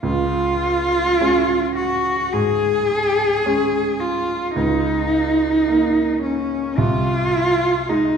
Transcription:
0.03 1.16 C#2 medium
0.03 1.73 F4 medium
1.21 2.30 G#3 soft
1.21 2.30 C#4 soft
1.75 2.34 F#4 medium
2.33 4.11 G#2 soft
2.33 4.02 G#4 medium
3.45 4.52 G#3 soft
3.45 4.52 C#4 soft
4.00 4.54 F4 medium
4.55 5.64 C#2 medium
4.55 6.18 D#4 medium
5.68 6.73 A#3 soft
5.68 6.73 D#4 soft
6.22 6.79 C#4 medium
6.77 7.84 C2 medium
6.77 7.91 F4 medium
7.89 8.17 G#3 soft
7.89 8.17 D#4 medium

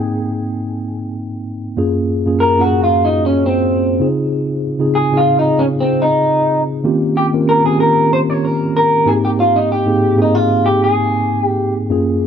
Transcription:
0.00 1.80 G#2 medium
0.00 1.77 A#3 medium
0.00 1.80 C4 medium
0.00 1.80 D#4 medium
0.00 1.11 G#4 medium
0.00 1.80 G5 medium
1.77 2.16 F#2 medium
1.77 2.16 A#3 medium
1.77 2.17 C#4 medium
1.77 2.17 F4 medium
1.77 2.17 G#4 medium
2.26 2.51 F#2 medium
2.26 2.51 A#3 medium
2.26 2.52 C#4 medium
2.26 2.52 F4 medium
2.26 2.52 G#4 medium
2.40 2.60 A#4 medium
2.57 3.59 F#2 medium
2.57 3.59 A#3 medium
2.57 3.60 C#4 medium
2.57 3.60 F4 medium
2.57 2.65 F#4 medium
2.57 2.83 F#4 medium
2.66 3.63 G#4 medium
2.84 3.05 F4 medium
3.05 3.26 D#4 medium
3.26 3.46 C#4 medium
3.46 4.06 C4 medium
4.00 4.63 C#3 medium
4.00 4.63 C4 medium
4.00 4.64 D#4 medium
4.00 4.64 F4 medium
4.00 4.64 G#4 medium
4.79 5.04 C#3 medium
4.79 5.05 C4 medium
4.79 5.05 D#4 medium
4.79 5.05 F4 medium
4.79 5.06 G#4 medium
4.95 5.17 G#4 medium
5.12 6.13 C#3 medium
5.12 6.14 C4 medium
5.12 6.14 D#4 medium
5.12 6.14 F4 medium
5.12 6.14 G#4 medium
5.17 5.38 F4 medium
5.39 5.60 D#4 medium
5.59 5.65 C#4 medium
5.80 6.02 C4 medium
6.02 6.60 D#4 medium
6.84 7.23 D#3 medium
6.84 7.23 A#3 medium
6.84 7.23 C4 medium
6.84 7.23 C#4 medium
6.84 7.24 F4 medium
6.84 7.24 G4 medium
7.17 7.25 G4 medium
7.33 7.58 D#3 medium
7.33 7.58 A#3 medium
7.33 7.58 C4 medium
7.33 7.59 C#4 medium
7.33 7.59 F4 medium
7.33 7.59 A#4 medium
7.49 7.65 A#4 medium
7.64 8.66 D#3 medium
7.64 8.66 A#3 medium
7.64 8.66 C4 medium
7.64 8.67 C#4 medium
7.64 8.67 F4 medium
7.64 8.67 G4 medium
7.64 7.80 G#4 medium
7.80 8.12 A#4 medium
8.13 8.18 C5 loud
8.30 8.44 C#5 medium
8.44 8.75 A#4 medium
8.77 9.08 A#4 loud
9.06 9.69 G#2 medium
9.06 9.69 A#3 medium
9.06 9.70 C4 medium
9.06 9.70 D#4 medium
9.06 9.70 G4 medium
9.06 9.13 G#4 medium
9.25 9.30 G4 medium
9.40 9.56 F4 medium
9.56 9.69 D#4 medium
9.72 10.21 G4 medium
9.86 10.11 G#2 medium
9.86 10.11 A#3 medium
9.86 10.11 C4 medium
9.86 10.11 D#4 medium
9.86 10.12 G#4 medium
10.17 11.18 G#2 medium
10.17 11.19 A#3 medium
10.17 11.19 C4 medium
10.17 11.19 D#4 medium
10.17 11.19 G#4 medium
10.22 10.35 D#4 medium
10.35 10.65 F4 medium
10.66 10.81 G4 medium
10.84 11.44 G#4 medium
11.44 11.73 G4 medium
11.90 12.27 F#2 medium
11.90 12.27 A#3 medium
11.90 12.27 C#4 medium
11.90 12.27 F4 medium
11.90 12.27 G#4 medium

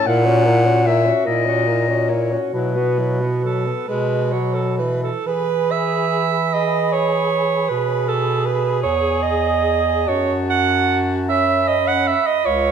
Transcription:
0.07 1.12 A#2 loud
0.07 0.27 A#3 medium
0.07 0.27 E4 medium
0.07 0.88 F#5 loud
0.25 0.47 C#4 medium
0.25 0.48 F#4 medium
0.46 0.67 A#3 medium
0.46 0.68 E4 medium
0.66 0.85 C#4 medium
0.66 0.86 F#4 medium
0.85 1.07 A#3 medium
0.85 1.09 E4 medium
0.85 1.26 E5 loud
1.05 1.27 C#4 medium
1.05 1.29 F#4 medium
1.25 2.37 A#2 medium
1.25 1.47 A#3 medium
1.25 1.50 E4 medium
1.25 2.10 D#5 loud
1.46 1.65 C#4 medium
1.46 1.68 F#4 medium
1.66 1.89 A#3 medium
1.70 1.91 E4 medium
1.88 2.11 C#4 medium
1.88 2.11 F#4 medium
2.09 2.33 A#3 medium
2.09 2.33 E4 medium
2.09 2.40 C#5 medium
2.32 2.53 C#4 medium
2.32 2.53 F#4 medium
2.53 3.72 B2 medium
2.53 2.77 F#3 medium
2.53 2.78 E4 medium
2.53 3.85 B4 loud
2.76 3.00 B3 medium
2.76 3.00 F#4 medium
2.98 3.23 F#3 medium
2.98 3.23 E4 medium
3.21 3.43 B3 medium
3.21 3.44 F#4 soft
3.44 3.68 F#3 medium
3.44 3.89 A4 medium
3.66 3.88 B3 medium
3.88 5.10 B2 medium
3.88 4.34 G#3 medium
3.88 4.33 B4 medium
4.32 4.81 F#3 medium
4.32 4.56 C#5 medium
4.54 4.78 A4 medium
4.78 5.13 E3 medium
4.78 5.02 B4 medium
5.03 5.28 A4 medium
5.26 7.66 E3 medium
5.26 6.50 G#4 medium
5.26 5.73 B4 loud
5.26 8.79 B5 medium
5.71 6.55 E5 loud
6.54 7.68 G#4 medium
6.54 6.94 D#5 loud
6.92 7.71 C#5 loud
7.69 8.86 B2 medium
7.69 10.09 G#4 medium
7.69 8.10 B4 medium
8.08 8.47 A4 medium
8.46 8.82 B4 medium
8.83 10.07 E2 medium
8.83 9.24 C#5 loud
8.83 10.08 G#5 medium
9.22 10.10 D#5 loud
10.06 12.15 F#2 medium
10.06 11.31 F#4 medium
10.06 10.37 C#5 medium
10.06 11.30 A5 medium
10.50 11.00 F#5 loud
11.29 12.18 C#4 medium
11.29 11.70 E5 loud
11.29 12.72 B5 medium
11.68 11.89 D#5 loud
11.88 12.09 F#5 loud
12.07 12.28 E5 loud
12.27 12.47 D#5 loud
12.45 12.72 C#2 medium
12.45 12.72 F4 medium
12.45 12.72 C#5 loud

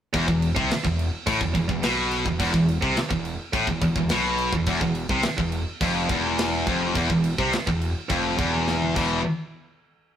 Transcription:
0.14 0.27 E1 loud
0.14 0.27 E2 loud
0.14 kick loud
0.14 crash medium
0.28 0.55 E1 medium
0.28 0.51 E2 medium
0.28 kick medium
0.42 crash medium
0.56 0.70 C2 medium
0.56 0.70 C3 loud
0.56 kick loud
0.70 muted distorted electric guitar stroke medium
0.70 muted picked electric bass stroke soft
0.70 snare loud
0.70 crash medium
0.85 1.11 E1 medium
0.85 1.07 E2 medium
0.85 kick medium
0.99 crash medium
1.27 1.40 A1 medium
1.27 1.40 A2 loud
1.27 kick loud
1.27 crash medium
1.41 1.54 E1 medium
1.41 1.54 E2 medium
1.41 kick medium
1.55 1.68 E1 medium
1.55 1.68 E2 medium
1.55 kick medium
1.55 crash medium
1.69 1.82 E1 medium
1.69 1.84 E2 medium
1.69 kick medium
1.83 2.23 B1 medium
1.83 2.25 B2 loud
1.83 snare loud
1.83 crash medium
2.11 crash medium
2.26 2.39 E1 medium
2.26 2.39 E2 medium
2.26 kick medium
2.40 2.53 E1 loud
2.40 2.53 E2 loud
2.40 kick medium
2.40 crash medium
2.54 2.80 E1 medium
2.54 2.77 E2 medium
2.54 kick medium
2.68 crash medium
2.82 2.96 C2 loud
2.82 2.96 C3 loud
2.82 kick loud
2.96 muted picked electric bass stroke soft
2.96 muted distorted electric guitar stroke medium
2.96 snare loud
2.96 crash medium
3.11 3.37 E1 medium
3.11 3.34 E2 medium
3.11 kick loud
3.25 crash medium
3.53 3.67 A1 medium
3.53 3.67 A2 loud
3.53 kick loud
3.53 crash medium
3.67 3.81 E1 medium
3.67 3.81 E2 medium
3.67 kick medium
3.81 3.95 E1 medium
3.81 3.96 E2 medium
3.81 kick medium
3.81 crash medium
3.96 4.09 E1 medium
3.96 4.11 E2 medium
3.96 kick medium
4.09 4.50 B1 medium
4.09 4.53 B2 loud
4.09 snare loud
4.09 crash medium
4.38 crash medium
4.53 4.66 E1 medium
4.53 4.66 E2 medium
4.53 kick loud
4.66 4.80 E1 loud
4.66 4.81 E2 loud
4.66 kick medium
4.66 crash medium
4.81 5.08 E1 medium
4.81 5.05 E2 medium
4.81 kick medium
4.95 crash medium
5.09 5.23 C2 loud
5.09 5.24 C3 loud
5.09 kick loud
5.23 muted picked electric bass stroke soft
5.23 muted distorted electric guitar stroke medium
5.23 snare loud
5.23 crash medium
5.38 5.65 E1 medium
5.38 5.62 E2 medium
5.38 kick medium
5.52 crash medium
5.81 6.08 F1 medium
5.81 6.09 F2 loud
5.81 kick loud
5.81 crash medium
6.09 6.63 E1 loud
6.09 6.67 E2 loud
6.09 kick loud
6.09 crash medium
6.38 snare loud
6.38 crash medium
6.67 6.94 F1 loud
6.67 6.95 F2 loud
6.67 kick loud
6.67 crash medium
6.95 7.09 E1 loud
6.95 7.09 E2 loud
6.95 kick loud
6.95 crash medium
7.10 7.37 E1 medium
7.10 7.33 E2 medium
7.10 kick medium
7.24 crash medium
7.38 7.52 C2 loud
7.38 7.52 C3 loud
7.38 kick loud
7.53 muted picked electric bass stroke soft
7.53 muted distorted electric guitar stroke medium
7.53 snare loud
7.53 crash medium
7.67 7.94 E1 medium
7.67 7.91 E2 medium
7.67 kick medium
7.82 crash medium
8.09 8.37 F1 medium
8.09 8.38 F2 loud
8.09 kick loud
8.09 crash medium
8.39 8.92 E1 loud
8.39 8.95 E2 loud
8.39 kick loud
8.39 crash medium
8.68 snare medium
8.82 high tom medium
8.96 9.23 E1 medium
8.96 9.19 E2 medium
8.96 9.20 B2 loud
8.96 9.20 E3 loud
8.96 kick loud
8.96 crash medium

